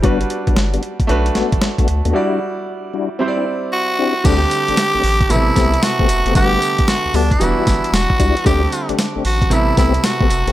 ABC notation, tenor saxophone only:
X:1
M:4/4
L:1/16
Q:"Swing 16ths" 1/4=114
K:Dmix
V:1 name="Tenor saxophone"
z16 | z12 F4 | G8 E4 F4 | G4 F2 D E4- E F4 |
G4 z2 F2 E2 E2 F4 |]